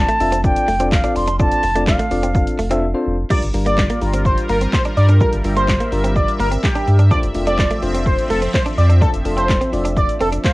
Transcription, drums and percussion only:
0.09 closed hi-hat medium
0.09 shaker medium
0.20 open hi-hat medium
0.20 shaker medium
0.32 closed hi-hat medium
0.32 shaker loud
0.44 kick loud
0.44 shaker medium
0.56 closed hi-hat medium
0.56 shaker medium
0.68 open hi-hat medium
0.68 shaker medium
0.80 closed hi-hat medium
0.80 shaker medium
0.92 kick loud
0.92 snare loud
0.92 clap loud
0.92 shaker medium
1.04 closed hi-hat medium
1.04 shaker medium
1.16 open hi-hat medium
1.16 shaker medium
1.27 closed hi-hat medium
1.27 shaker medium
1.39 kick loud
1.39 shaker medium
1.52 closed hi-hat medium
1.52 shaker medium
1.63 open hi-hat medium
1.63 shaker medium
1.76 closed hi-hat medium
1.76 shaker medium
1.87 kick loud
1.87 snare loud
1.87 clap loud
1.87 shaker medium
1.99 closed hi-hat medium
1.99 shaker medium
2.11 open hi-hat medium
2.11 shaker medium
2.23 closed hi-hat loud
2.23 shaker medium
2.35 kick loud
2.35 shaker medium
2.47 closed hi-hat medium
2.47 shaker medium
2.59 open hi-hat medium
2.59 shaker medium
2.71 closed hi-hat medium
2.71 shaker medium
3.30 kick loud
3.30 crash loud
3.30 shaker medium
3.42 closed hi-hat medium
3.42 shaker medium
3.54 open hi-hat medium
3.54 shaker medium
3.66 closed hi-hat medium
3.66 shaker medium
3.78 kick loud
3.78 snare medium
3.78 clap loud
3.78 shaker medium
3.90 closed hi-hat medium
3.90 shaker medium
4.02 open hi-hat medium
4.02 shaker medium
4.14 closed hi-hat medium
4.14 shaker medium
4.25 kick loud
4.25 shaker medium
4.38 closed hi-hat medium
4.38 shaker medium
4.49 open hi-hat medium
4.49 shaker medium
4.61 closed hi-hat medium
4.61 shaker medium
4.73 kick loud
4.73 snare medium
4.73 clap loud
4.73 shaker medium
4.85 closed hi-hat medium
4.85 shaker medium
4.97 open hi-hat medium
4.97 shaker medium
5.09 closed hi-hat medium
5.09 shaker medium
5.20 kick loud
5.20 shaker medium
5.33 closed hi-hat medium
5.33 shaker medium
5.44 open hi-hat medium
5.44 shaker medium
5.57 closed hi-hat medium
5.57 shaker medium
5.68 kick loud
5.68 snare medium
5.68 clap loud
5.68 shaker medium
5.80 closed hi-hat medium
5.80 shaker medium
5.92 open hi-hat medium
5.92 shaker soft
6.04 closed hi-hat medium
6.04 shaker medium
6.16 kick loud
6.16 shaker medium
6.28 closed hi-hat medium
6.28 shaker medium
6.40 open hi-hat medium
6.40 shaker medium
6.52 closed hi-hat medium
6.52 shaker medium
6.64 kick loud
6.64 snare medium
6.64 clap loud
6.64 shaker medium
6.75 closed hi-hat medium
6.75 shaker medium
6.88 open hi-hat medium
6.88 shaker medium
6.99 closed hi-hat medium
6.99 shaker medium
7.11 kick loud
7.11 shaker medium
7.23 closed hi-hat medium
7.23 shaker medium
7.35 open hi-hat medium
7.35 shaker medium
7.47 closed hi-hat medium
7.47 shaker medium
7.59 kick loud
7.59 snare loud
7.59 clap loud
7.59 shaker medium
7.71 closed hi-hat medium
7.71 shaker medium
7.83 open hi-hat medium
7.83 shaker medium
7.95 closed hi-hat medium
7.95 shaker medium
8.06 kick loud
8.06 shaker medium
8.19 closed hi-hat medium
8.19 shaker medium
8.30 open hi-hat medium
8.30 shaker medium
8.42 closed hi-hat medium
8.42 shaker medium
8.54 kick loud
8.54 snare medium
8.54 clap loud
8.54 shaker medium
8.66 closed hi-hat medium
8.66 shaker medium
8.78 open hi-hat medium
8.78 shaker medium
8.90 closed hi-hat medium
8.90 shaker medium
9.02 kick loud
9.02 shaker medium
9.14 closed hi-hat medium
9.14 shaker medium
9.25 open hi-hat medium
9.25 shaker medium
9.38 closed hi-hat medium
9.38 shaker medium
9.49 kick loud
9.49 snare loud
9.49 clap loud
9.49 shaker medium
9.62 closed hi-hat medium
9.62 shaker medium
9.73 open hi-hat medium
9.73 shaker medium
9.85 closed hi-hat medium
9.85 shaker medium
9.97 kick loud
9.97 shaker medium
10.09 closed hi-hat medium
10.09 shaker medium
10.21 open hi-hat medium
10.21 shaker medium
10.33 closed hi-hat medium
10.33 shaker medium
10.44 kick loud
10.44 snare medium
10.44 clap loud
10.44 shaker medium

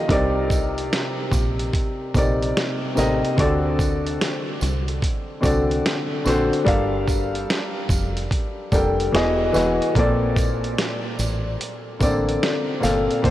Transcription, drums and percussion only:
0.09 kick loud
0.09 closed hi-hat medium
0.50 kick medium
0.50 closed hi-hat medium
0.50 tambourine soft
0.78 closed hi-hat soft
0.93 snare loud
0.93 closed hi-hat medium
1.32 kick medium
1.32 closed hi-hat medium
1.32 tambourine medium
1.59 closed hi-hat soft
1.73 kick medium
1.73 closed hi-hat medium
2.14 kick medium
2.14 closed hi-hat medium
2.14 tambourine medium
2.43 closed hi-hat soft
2.57 snare loud
2.57 closed hi-hat medium
2.97 snare soft
2.97 closed hi-hat medium
2.97 tambourine medium
3.25 closed hi-hat soft
3.38 kick loud
3.38 closed hi-hat medium
3.79 kick medium
3.79 closed hi-hat medium
3.79 tambourine soft
4.07 closed hi-hat soft
4.21 snare loud
4.21 closed hi-hat medium
4.61 closed hi-hat medium
4.61 tambourine medium
4.88 closed hi-hat soft
5.02 kick medium
5.02 closed hi-hat medium
5.43 kick medium
5.43 closed hi-hat medium
5.43 tambourine soft
5.71 closed hi-hat soft
5.86 snare loud
5.86 closed hi-hat medium
6.26 snare soft
6.26 closed hi-hat medium
6.26 tambourine medium
6.53 closed hi-hat soft
6.67 kick loud
6.67 closed hi-hat medium
7.08 kick medium
7.08 closed hi-hat medium
7.08 tambourine medium
7.35 closed hi-hat soft
7.50 snare loud
7.50 closed hi-hat medium
7.89 kick medium
7.89 closed hi-hat medium
7.89 tambourine medium
8.17 closed hi-hat soft
8.31 kick medium
8.31 closed hi-hat medium
8.72 kick medium
8.72 closed hi-hat medium
8.72 tambourine medium
9.00 closed hi-hat soft
9.15 snare loud
9.15 closed hi-hat medium
9.54 snare soft
9.54 closed hi-hat medium
9.54 tambourine medium
9.82 closed hi-hat soft
9.95 kick loud
9.95 closed hi-hat medium
10.36 kick medium
10.36 closed hi-hat medium
10.36 tambourine medium
10.64 closed hi-hat soft
10.78 snare loud
10.78 closed hi-hat medium
11.19 closed hi-hat medium
11.19 tambourine medium
11.61 closed hi-hat medium
12.01 kick medium
12.01 closed hi-hat medium
12.01 tambourine medium
12.29 closed hi-hat soft
12.43 snare loud
12.43 closed hi-hat medium
12.83 snare soft
12.83 closed hi-hat medium
12.83 tambourine medium
13.11 closed hi-hat soft
13.24 kick loud
13.24 closed hi-hat medium

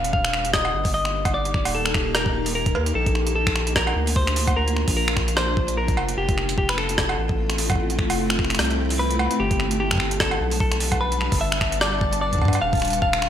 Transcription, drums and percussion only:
0.04 closed hi-hat medium
0.13 kick loud
0.25 finger snap medium
0.33 finger snap medium
0.45 closed hi-hat medium
0.54 kick loud
0.54 cross-stick loud
0.65 cowbell medium
0.85 kick loud
0.85 open hi-hat medium
1.05 finger snap medium
1.25 kick loud
1.25 closed hi-hat medium
1.25 cowbell medium
1.45 closed hi-hat soft
1.54 finger snap soft
1.54 kick loud
1.65 open hi-hat medium
1.65 cowbell medium
1.86 finger snap medium
1.94 finger snap medium
1.94 kick loud
2.15 cross-stick loud
2.15 closed hi-hat medium
2.26 kick loud
2.46 open hi-hat medium
2.66 kick loud
2.66 closed hi-hat medium
2.75 cowbell medium
2.86 closed hi-hat medium
3.06 kick loud
3.06 closed hi-hat medium
3.15 finger snap soft
3.27 closed hi-hat medium
3.47 finger snap medium
3.47 kick loud
3.56 finger snap medium
3.67 closed hi-hat medium
3.76 kick loud
3.76 cross-stick loud
3.87 cowbell medium
4.07 open hi-hat medium
4.16 kick loud
4.27 finger snap medium
4.27 closed hi-hat soft
4.36 open hi-hat medium
4.47 kick loud
4.47 closed hi-hat medium
4.47 cowbell medium
4.68 closed hi-hat medium
4.77 finger snap soft
4.88 kick loud
4.88 open hi-hat medium
5.08 finger snap medium
5.17 finger snap medium
5.17 kick loud
5.28 closed hi-hat medium
5.37 cross-stick loud
5.57 kick loud
5.68 closed hi-hat medium
5.88 kick loud
5.88 closed hi-hat soft
5.97 cowbell medium
6.09 closed hi-hat medium
6.29 kick loud
6.29 closed hi-hat medium
6.38 finger snap soft
6.49 closed hi-hat medium
6.58 kick loud
6.69 finger snap medium
6.78 finger snap medium
6.89 closed hi-hat medium
6.98 kick loud
6.98 cross-stick loud
7.09 cowbell medium
7.29 kick loud
7.50 finger snap medium
7.50 closed hi-hat medium
7.58 open hi-hat medium
7.70 kick loud
7.70 closed hi-hat medium
7.70 cowbell loud
7.72 kick medium
7.76 kick medium
7.90 closed hi-hat medium
7.99 finger snap soft
7.99 kick loud
8.10 open hi-hat medium
8.10 cowbell medium
8.30 finger snap medium
8.39 finger snap soft
8.39 kick loud
8.45 finger snap soft
8.50 finger snap soft
8.50 closed hi-hat medium
8.55 finger snap medium
8.55 closed hi-hat medium
8.59 cross-stick loud
8.59 closed hi-hat soft
8.59 open hi-hat medium
8.65 closed hi-hat soft
8.70 closed hi-hat soft
8.90 open hi-hat medium
9.11 closed hi-hat medium
9.19 cowbell medium
9.31 closed hi-hat medium
9.51 kick loud
9.51 closed hi-hat medium
9.60 finger snap soft
9.71 closed hi-hat medium
9.91 finger snap medium
9.91 kick medium
9.93 kick medium
9.96 kick medium
9.98 finger snap medium
9.98 kick medium
10.11 closed hi-hat medium
10.20 kick loud
10.20 cross-stick loud
10.31 cowbell medium
10.51 open hi-hat medium
10.60 kick loud
10.72 finger snap medium
10.72 closed hi-hat medium
10.80 open hi-hat medium
10.92 kick loud
10.92 closed hi-hat medium
10.92 cowbell medium
11.12 closed hi-hat medium
11.21 finger snap soft
11.32 kick loud
11.32 open hi-hat medium
11.52 finger snap medium
11.61 finger snap medium
11.61 kick loud
11.72 closed hi-hat medium
11.81 cross-stick loud
12.01 kick loud
12.13 closed hi-hat medium
12.33 kick soft
12.33 closed hi-hat medium
12.35 kick medium
12.39 kick medium
12.42 kick medium
12.42 cowbell soft
12.45 kick medium
12.48 kick loud
12.48 cowbell medium
12.53 closed hi-hat medium
12.53 cowbell medium
12.73 kick loud
12.73 closed hi-hat soft
12.75 closed hi-hat soft
12.77 closed hi-hat soft
12.80 finger snap soft
12.80 closed hi-hat soft
12.82 closed hi-hat soft
12.85 closed hi-hat soft
12.88 closed hi-hat soft
12.90 closed hi-hat soft
12.93 closed hi-hat medium
13.02 kick loud
13.13 finger snap medium
13.22 finger snap medium

